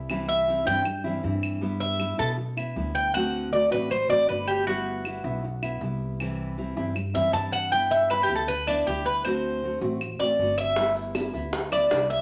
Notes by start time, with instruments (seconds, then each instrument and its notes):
Already playing: upright bass C2
0.09 nylon-string guitar C3 E3 G3 C4 E4, claves
0.28 cuban tres E5
0.47 nylon-string guitar E3 G3 C4 E4
0.65 upright bass G2, nylon-string guitar E3 G3 C4 E4, cuban tres G5
0.85 muted nylon-string guitar stroke, claves
1.04 nylon-string guitar E3 G3 C4 E4
1.23 upright bass G2, nylon-string guitar E3 G3 C4 E4
1.43 claves
1.61 nylon-string guitar G3 B3 E4
1.80 cuban tres E5
1.99 nylon-string guitar G3 B3 E4, claves
2.18 upright bass B2, nylon-string guitar B3 E4, cuban tres A4
2.38 muted nylon-string guitar stroke
2.57 nylon-string guitar B3 E4, claves
2.76 upright bass D2, nylon-string guitar G3 B3 E4
2.95 cuban tres G5
3.14 nylon-string guitar D3 A3 C4 F#4, cuban tres F#5, claves
3.52 nylon-string guitar D3 A3 C4 F#4, cuban tres D5
3.71 upright bass A1, nylon-string guitar A3 C4 F#4, cuban tres B4
3.90 cuban tres C5, muted nylon-string guitar stroke, claves
4.09 upright bass A1, nylon-string guitar A3 C4 F#4, cuban tres D5
4.28 upright bass G1, nylon-string guitar D3 A3 C4 F#4, cuban tres B4
4.48 cuban tres G4, claves
4.67 nylon-string guitar G3 B3 E4, cuban tres F#4
5.05 nylon-string guitar G3 B3 E4, claves
5.24 upright bass B1, nylon-string guitar B3 E4
5.44 muted nylon-string guitar stroke
5.62 nylon-string guitar B3 E4, claves
5.81 upright bass C2, nylon-string guitar G3 B3 E4
6.20 nylon-string guitar C3 E3 G3 C4 E4, claves
6.57 nylon-string guitar E3 G3 C4 E4
6.76 upright bass G2, nylon-string guitar E3 G3 C4 E4
6.95 muted nylon-string guitar stroke, claves
7.14 upright bass F#2, nylon-string guitar E3 G3 C4 E4, cuban tres E5
7.33 upright bass G2, nylon-string guitar E3 G3 C4 E4, cuban tres A5
7.52 cuban tres F#5, claves
7.71 nylon-string guitar G3 B3 E4, cuban tres G5
7.91 cuban tres E5
8.10 nylon-string guitar G3 B3 E4, cuban tres B4, claves
8.23 cuban tres G4
8.29 upright bass D2, nylon-string guitar B3 E4
8.36 cuban tres A4
8.48 cuban tres B4, muted nylon-string guitar stroke
8.67 nylon-string guitar B3 E4, cuban tres D4, claves
8.87 upright bass D2, nylon-string guitar G3 B3 E4, cuban tres G4
9.06 cuban tres B4
9.25 nylon-string guitar D3 A3 C4 F#4, cuban tres C5, claves
9.63 nylon-string guitar D3 A3 C4 F#4
9.81 upright bass A1, nylon-string guitar A3 C4 F#4
10.01 muted nylon-string guitar stroke, claves
10.20 upright bass A1, nylon-string guitar A3 C4 F#4, cuban tres D5
10.39 upright bass G1, nylon-string guitar D3 A3 C4 F#4
10.58 cuban tres E5, claves
10.76 nylon-string guitar G3 B3 E4, high bongo, maracas
10.96 maracas
11.15 nylon-string guitar G3 B3 E4, high bongo, claves, maracas
11.34 upright bass D2, nylon-string guitar B3 E4, maracas
11.53 muted nylon-string guitar stroke, high bongo, maracas
11.72 nylon-string guitar B3 E4, cuban tres D5, claves, maracas
11.91 upright bass C2, nylon-string guitar G3 B3 E4, high bongo, low bongo, maracas
12.10 cuban tres E5, maracas